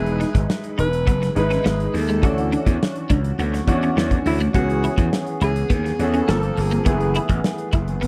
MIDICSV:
0, 0, Header, 1, 7, 480
1, 0, Start_track
1, 0, Key_signature, 4, "major"
1, 0, Tempo, 579151
1, 1851, Time_signature, 4, 2, 24, 8
1, 6692, End_track
2, 0, Start_track
2, 0, Title_t, "Alto saxophone"
2, 0, Program_c, 0, 65
2, 0, Note_on_c, 0, 68, 105
2, 382, Note_off_c, 0, 68, 0
2, 664, Note_on_c, 0, 71, 105
2, 1104, Note_off_c, 0, 71, 0
2, 1154, Note_on_c, 0, 71, 103
2, 1636, Note_on_c, 0, 69, 87
2, 1649, Note_off_c, 0, 71, 0
2, 2343, Note_off_c, 0, 69, 0
2, 3539, Note_on_c, 0, 64, 86
2, 3645, Note_off_c, 0, 64, 0
2, 3772, Note_on_c, 0, 66, 110
2, 4218, Note_off_c, 0, 66, 0
2, 4504, Note_on_c, 0, 68, 92
2, 4995, Note_on_c, 0, 69, 107
2, 5008, Note_off_c, 0, 68, 0
2, 5476, Note_on_c, 0, 68, 90
2, 5489, Note_off_c, 0, 69, 0
2, 6182, Note_off_c, 0, 68, 0
2, 6692, End_track
3, 0, Start_track
3, 0, Title_t, "Grand piano"
3, 0, Program_c, 1, 0
3, 0, Note_on_c, 1, 56, 61
3, 0, Note_on_c, 1, 63, 56
3, 0, Note_on_c, 1, 64, 61
3, 0, Note_on_c, 1, 71, 73
3, 90, Control_c, 1, 64, 127
3, 559, Note_off_c, 1, 56, 0
3, 563, Note_off_c, 1, 63, 0
3, 565, Note_off_c, 1, 64, 0
3, 593, Note_off_c, 1, 71, 0
3, 1121, Note_on_c, 1, 56, 68
3, 1127, Note_on_c, 1, 63, 61
3, 1130, Note_on_c, 1, 64, 57
3, 1132, Note_on_c, 1, 71, 76
3, 1602, Note_off_c, 1, 56, 0
3, 1605, Note_off_c, 1, 63, 0
3, 1607, Note_off_c, 1, 64, 0
3, 1607, Note_off_c, 1, 71, 0
3, 1837, Note_on_c, 1, 52, 68
3, 1844, Note_on_c, 1, 61, 61
3, 1847, Note_on_c, 1, 62, 63
3, 1851, Note_on_c, 1, 66, 73
3, 1863, Control_c, 1, 64, 0
3, 2028, Control_c, 1, 64, 127
3, 2479, Note_off_c, 1, 52, 0
3, 2482, Note_off_c, 1, 61, 0
3, 2484, Note_off_c, 1, 62, 0
3, 2486, Note_off_c, 1, 66, 0
3, 3041, Note_on_c, 1, 52, 81
3, 3047, Note_on_c, 1, 61, 75
3, 3050, Note_on_c, 1, 62, 72
3, 3050, Note_on_c, 1, 66, 84
3, 3522, Note_off_c, 1, 52, 0
3, 3525, Note_off_c, 1, 61, 0
3, 3526, Note_off_c, 1, 62, 0
3, 3526, Note_off_c, 1, 66, 0
3, 3760, Note_on_c, 1, 59, 61
3, 3761, Note_on_c, 1, 52, 66
3, 3764, Note_on_c, 1, 61, 60
3, 3768, Note_on_c, 1, 68, 73
3, 3780, Control_c, 1, 64, 0
3, 3912, Control_c, 1, 64, 127
3, 4400, Note_off_c, 1, 52, 0
3, 4400, Note_off_c, 1, 59, 0
3, 4402, Note_off_c, 1, 61, 0
3, 4404, Note_off_c, 1, 68, 0
3, 4968, Note_on_c, 1, 52, 64
3, 4970, Note_on_c, 1, 59, 62
3, 4974, Note_on_c, 1, 61, 63
3, 4974, Note_on_c, 1, 68, 75
3, 5203, Note_on_c, 1, 53, 67
3, 5204, Note_on_c, 1, 58, 64
3, 5209, Note_off_c, 1, 52, 0
3, 5210, Note_off_c, 1, 59, 0
3, 5211, Note_off_c, 1, 68, 0
3, 5212, Note_off_c, 1, 61, 0
3, 5212, Note_on_c, 1, 60, 60
3, 5212, Note_on_c, 1, 69, 76
3, 5221, Control_c, 1, 64, 0
3, 5387, Control_c, 1, 64, 127
3, 5590, Note_off_c, 1, 53, 0
3, 5591, Note_off_c, 1, 58, 0
3, 5594, Note_off_c, 1, 60, 0
3, 5594, Note_off_c, 1, 69, 0
3, 5682, Note_on_c, 1, 52, 65
3, 5687, Note_on_c, 1, 57, 57
3, 5692, Note_on_c, 1, 59, 64
3, 5695, Note_on_c, 1, 68, 69
3, 5698, Control_c, 1, 64, 0
3, 5819, Control_c, 1, 64, 127
3, 6320, Note_off_c, 1, 52, 0
3, 6323, Note_off_c, 1, 57, 0
3, 6325, Note_off_c, 1, 59, 0
3, 6327, Note_off_c, 1, 68, 0
3, 6692, End_track
4, 0, Start_track
4, 0, Title_t, "Clean electric guitar"
4, 0, Program_c, 2, 27
4, 166, Note_on_c, 2, 63, 63
4, 237, Note_off_c, 2, 63, 0
4, 644, Note_on_c, 2, 63, 67
4, 716, Note_off_c, 2, 63, 0
4, 885, Note_on_c, 2, 59, 71
4, 957, Note_off_c, 2, 59, 0
4, 1246, Note_on_c, 2, 61, 64
4, 1318, Note_off_c, 2, 61, 0
4, 1362, Note_on_c, 2, 59, 66
4, 1435, Note_off_c, 2, 59, 0
4, 1730, Note_on_c, 2, 56, 70
4, 1801, Note_off_c, 2, 56, 0
4, 1852, Note_on_c, 2, 61, 70
4, 1922, Note_off_c, 2, 61, 0
4, 2092, Note_on_c, 2, 62, 68
4, 2162, Note_off_c, 2, 62, 0
4, 2566, Note_on_c, 2, 62, 69
4, 2638, Note_off_c, 2, 62, 0
4, 2814, Note_on_c, 2, 59, 72
4, 2883, Note_off_c, 2, 59, 0
4, 3174, Note_on_c, 2, 61, 67
4, 3243, Note_off_c, 2, 61, 0
4, 3290, Note_on_c, 2, 59, 65
4, 3360, Note_off_c, 2, 59, 0
4, 3650, Note_on_c, 2, 57, 71
4, 3720, Note_off_c, 2, 57, 0
4, 3769, Note_on_c, 2, 59, 74
4, 3840, Note_off_c, 2, 59, 0
4, 4011, Note_on_c, 2, 64, 72
4, 4081, Note_off_c, 2, 64, 0
4, 4489, Note_on_c, 2, 64, 66
4, 4559, Note_off_c, 2, 64, 0
4, 4723, Note_on_c, 2, 59, 71
4, 4795, Note_off_c, 2, 59, 0
4, 5086, Note_on_c, 2, 61, 65
4, 5157, Note_off_c, 2, 61, 0
4, 5204, Note_on_c, 2, 58, 68
4, 5276, Note_off_c, 2, 58, 0
4, 5564, Note_on_c, 2, 58, 73
4, 5636, Note_off_c, 2, 58, 0
4, 5677, Note_on_c, 2, 59, 72
4, 5751, Note_off_c, 2, 59, 0
4, 5931, Note_on_c, 2, 64, 69
4, 6001, Note_off_c, 2, 64, 0
4, 6405, Note_on_c, 2, 64, 68
4, 6476, Note_off_c, 2, 64, 0
4, 6641, Note_on_c, 2, 59, 70
4, 6692, Note_off_c, 2, 59, 0
4, 6692, End_track
5, 0, Start_track
5, 0, Title_t, "Slap bass"
5, 0, Program_c, 3, 36
5, 0, Note_on_c, 3, 28, 89
5, 193, Note_off_c, 3, 28, 0
5, 290, Note_on_c, 3, 32, 81
5, 377, Note_off_c, 3, 32, 0
5, 650, Note_on_c, 3, 28, 78
5, 889, Note_off_c, 3, 28, 0
5, 889, Note_on_c, 3, 30, 86
5, 1063, Note_off_c, 3, 30, 0
5, 1128, Note_on_c, 3, 32, 85
5, 1303, Note_off_c, 3, 32, 0
5, 1370, Note_on_c, 3, 32, 84
5, 1544, Note_off_c, 3, 32, 0
5, 1607, Note_on_c, 3, 39, 79
5, 1849, Note_off_c, 3, 39, 0
5, 1849, Note_on_c, 3, 38, 94
5, 2111, Note_off_c, 3, 38, 0
5, 2210, Note_on_c, 3, 40, 82
5, 2297, Note_off_c, 3, 40, 0
5, 2569, Note_on_c, 3, 37, 82
5, 2743, Note_off_c, 3, 37, 0
5, 2806, Note_on_c, 3, 38, 84
5, 2981, Note_off_c, 3, 38, 0
5, 3046, Note_on_c, 3, 40, 84
5, 3222, Note_off_c, 3, 40, 0
5, 3288, Note_on_c, 3, 40, 86
5, 3463, Note_off_c, 3, 40, 0
5, 3528, Note_on_c, 3, 38, 81
5, 3702, Note_off_c, 3, 38, 0
5, 3767, Note_on_c, 3, 37, 91
5, 4029, Note_off_c, 3, 37, 0
5, 4126, Note_on_c, 3, 40, 79
5, 4214, Note_off_c, 3, 40, 0
5, 4486, Note_on_c, 3, 37, 93
5, 4661, Note_off_c, 3, 37, 0
5, 4725, Note_on_c, 3, 39, 89
5, 4900, Note_off_c, 3, 39, 0
5, 4966, Note_on_c, 3, 40, 85
5, 5141, Note_off_c, 3, 40, 0
5, 5207, Note_on_c, 3, 31, 93
5, 5381, Note_off_c, 3, 31, 0
5, 5449, Note_on_c, 3, 31, 82
5, 5623, Note_off_c, 3, 31, 0
5, 5685, Note_on_c, 3, 30, 92
5, 5947, Note_off_c, 3, 30, 0
5, 6046, Note_on_c, 3, 33, 80
5, 6134, Note_off_c, 3, 33, 0
5, 6411, Note_on_c, 3, 30, 79
5, 6584, Note_off_c, 3, 30, 0
5, 6642, Note_on_c, 3, 32, 83
5, 6692, Note_off_c, 3, 32, 0
5, 6692, End_track
6, 0, Start_track
6, 0, Title_t, "Muted clean electric guitar strokes"
6, 287, Note_on_c, 9, 29, 42
6, 370, Note_off_c, 9, 29, 0
6, 1011, Note_on_c, 9, 29, 42
6, 1094, Note_off_c, 9, 29, 0
6, 1606, Note_on_c, 9, 29, 41
6, 1689, Note_off_c, 9, 29, 0
6, 2210, Note_on_c, 9, 29, 38
6, 2293, Note_off_c, 9, 29, 0
6, 2931, Note_on_c, 9, 29, 43
6, 3014, Note_off_c, 9, 29, 0
6, 3533, Note_on_c, 9, 29, 41
6, 3616, Note_off_c, 9, 29, 0
6, 4126, Note_on_c, 9, 29, 42
6, 4209, Note_off_c, 9, 29, 0
6, 4845, Note_on_c, 9, 29, 41
6, 4928, Note_off_c, 9, 29, 0
6, 5449, Note_on_c, 9, 29, 40
6, 5532, Note_off_c, 9, 29, 0
6, 6041, Note_on_c, 9, 29, 42
6, 6124, Note_off_c, 9, 29, 0
6, 6692, End_track
7, 0, Start_track
7, 0, Title_t, "Drums"
7, 51, Note_on_c, 9, 42, 42
7, 134, Note_off_c, 9, 42, 0
7, 172, Note_on_c, 9, 42, 60
7, 181, Note_on_c, 9, 38, 33
7, 255, Note_off_c, 9, 42, 0
7, 264, Note_off_c, 9, 38, 0
7, 289, Note_on_c, 9, 36, 87
7, 289, Note_on_c, 9, 42, 57
7, 372, Note_off_c, 9, 36, 0
7, 372, Note_off_c, 9, 42, 0
7, 413, Note_on_c, 9, 38, 100
7, 496, Note_off_c, 9, 38, 0
7, 528, Note_on_c, 9, 42, 44
7, 611, Note_off_c, 9, 42, 0
7, 652, Note_on_c, 9, 42, 62
7, 735, Note_off_c, 9, 42, 0
7, 771, Note_on_c, 9, 42, 48
7, 854, Note_off_c, 9, 42, 0
7, 890, Note_on_c, 9, 36, 99
7, 893, Note_on_c, 9, 42, 71
7, 973, Note_off_c, 9, 36, 0
7, 975, Note_off_c, 9, 42, 0
7, 1016, Note_on_c, 9, 42, 51
7, 1022, Note_on_c, 9, 38, 33
7, 1099, Note_off_c, 9, 42, 0
7, 1105, Note_off_c, 9, 38, 0
7, 1129, Note_on_c, 9, 42, 63
7, 1212, Note_off_c, 9, 42, 0
7, 1249, Note_on_c, 9, 42, 40
7, 1260, Note_on_c, 9, 38, 28
7, 1331, Note_off_c, 9, 42, 0
7, 1343, Note_off_c, 9, 38, 0
7, 1375, Note_on_c, 9, 38, 104
7, 1458, Note_off_c, 9, 38, 0
7, 1492, Note_on_c, 9, 42, 44
7, 1575, Note_off_c, 9, 42, 0
7, 1612, Note_on_c, 9, 46, 68
7, 1621, Note_on_c, 9, 38, 31
7, 1695, Note_off_c, 9, 46, 0
7, 1704, Note_off_c, 9, 38, 0
7, 1736, Note_on_c, 9, 42, 47
7, 1818, Note_off_c, 9, 42, 0
7, 1849, Note_on_c, 9, 36, 99
7, 1850, Note_on_c, 9, 42, 71
7, 1932, Note_off_c, 9, 36, 0
7, 1933, Note_off_c, 9, 42, 0
7, 1972, Note_on_c, 9, 42, 43
7, 2055, Note_off_c, 9, 42, 0
7, 2093, Note_on_c, 9, 42, 60
7, 2176, Note_off_c, 9, 42, 0
7, 2208, Note_on_c, 9, 36, 84
7, 2211, Note_on_c, 9, 42, 57
7, 2291, Note_off_c, 9, 36, 0
7, 2294, Note_off_c, 9, 42, 0
7, 2343, Note_on_c, 9, 38, 100
7, 2426, Note_off_c, 9, 38, 0
7, 2449, Note_on_c, 9, 42, 47
7, 2532, Note_off_c, 9, 42, 0
7, 2568, Note_on_c, 9, 42, 63
7, 2570, Note_on_c, 9, 36, 87
7, 2651, Note_off_c, 9, 42, 0
7, 2653, Note_off_c, 9, 36, 0
7, 2689, Note_on_c, 9, 42, 45
7, 2772, Note_off_c, 9, 42, 0
7, 2811, Note_on_c, 9, 42, 70
7, 2894, Note_off_c, 9, 42, 0
7, 2935, Note_on_c, 9, 42, 50
7, 2940, Note_on_c, 9, 38, 35
7, 3017, Note_off_c, 9, 42, 0
7, 3023, Note_off_c, 9, 38, 0
7, 3047, Note_on_c, 9, 36, 87
7, 3052, Note_on_c, 9, 42, 65
7, 3129, Note_off_c, 9, 36, 0
7, 3135, Note_off_c, 9, 42, 0
7, 3171, Note_on_c, 9, 42, 42
7, 3254, Note_off_c, 9, 42, 0
7, 3299, Note_on_c, 9, 38, 104
7, 3381, Note_off_c, 9, 38, 0
7, 3406, Note_on_c, 9, 36, 85
7, 3407, Note_on_c, 9, 42, 47
7, 3489, Note_off_c, 9, 36, 0
7, 3490, Note_off_c, 9, 42, 0
7, 3529, Note_on_c, 9, 46, 68
7, 3612, Note_off_c, 9, 46, 0
7, 3650, Note_on_c, 9, 42, 49
7, 3733, Note_off_c, 9, 42, 0
7, 3766, Note_on_c, 9, 42, 71
7, 3767, Note_on_c, 9, 36, 104
7, 3849, Note_off_c, 9, 42, 0
7, 3850, Note_off_c, 9, 36, 0
7, 3892, Note_on_c, 9, 42, 44
7, 3975, Note_off_c, 9, 42, 0
7, 4009, Note_on_c, 9, 42, 58
7, 4092, Note_off_c, 9, 42, 0
7, 4125, Note_on_c, 9, 36, 85
7, 4125, Note_on_c, 9, 42, 56
7, 4208, Note_off_c, 9, 36, 0
7, 4208, Note_off_c, 9, 42, 0
7, 4251, Note_on_c, 9, 38, 97
7, 4334, Note_off_c, 9, 38, 0
7, 4364, Note_on_c, 9, 42, 46
7, 4447, Note_off_c, 9, 42, 0
7, 4484, Note_on_c, 9, 42, 65
7, 4567, Note_off_c, 9, 42, 0
7, 4607, Note_on_c, 9, 42, 46
7, 4689, Note_off_c, 9, 42, 0
7, 4725, Note_on_c, 9, 36, 96
7, 4726, Note_on_c, 9, 42, 73
7, 4808, Note_off_c, 9, 36, 0
7, 4809, Note_off_c, 9, 42, 0
7, 4854, Note_on_c, 9, 42, 52
7, 4860, Note_on_c, 9, 38, 34
7, 4937, Note_off_c, 9, 42, 0
7, 4943, Note_off_c, 9, 38, 0
7, 4969, Note_on_c, 9, 42, 64
7, 5052, Note_off_c, 9, 42, 0
7, 5086, Note_on_c, 9, 42, 43
7, 5169, Note_off_c, 9, 42, 0
7, 5210, Note_on_c, 9, 38, 106
7, 5293, Note_off_c, 9, 38, 0
7, 5328, Note_on_c, 9, 42, 47
7, 5411, Note_off_c, 9, 42, 0
7, 5447, Note_on_c, 9, 46, 68
7, 5455, Note_on_c, 9, 38, 32
7, 5530, Note_off_c, 9, 46, 0
7, 5538, Note_off_c, 9, 38, 0
7, 5565, Note_on_c, 9, 42, 46
7, 5648, Note_off_c, 9, 42, 0
7, 5683, Note_on_c, 9, 42, 78
7, 5687, Note_on_c, 9, 36, 102
7, 5766, Note_off_c, 9, 42, 0
7, 5770, Note_off_c, 9, 36, 0
7, 5805, Note_on_c, 9, 42, 42
7, 5888, Note_off_c, 9, 42, 0
7, 5923, Note_on_c, 9, 42, 63
7, 6006, Note_off_c, 9, 42, 0
7, 6044, Note_on_c, 9, 42, 54
7, 6046, Note_on_c, 9, 36, 84
7, 6127, Note_off_c, 9, 42, 0
7, 6129, Note_off_c, 9, 36, 0
7, 6169, Note_on_c, 9, 38, 104
7, 6252, Note_off_c, 9, 38, 0
7, 6283, Note_on_c, 9, 42, 48
7, 6366, Note_off_c, 9, 42, 0
7, 6403, Note_on_c, 9, 42, 63
7, 6409, Note_on_c, 9, 36, 89
7, 6486, Note_off_c, 9, 42, 0
7, 6491, Note_off_c, 9, 36, 0
7, 6529, Note_on_c, 9, 42, 47
7, 6612, Note_off_c, 9, 42, 0
7, 6652, Note_on_c, 9, 42, 76
7, 6692, Note_off_c, 9, 42, 0
7, 6692, End_track
0, 0, End_of_file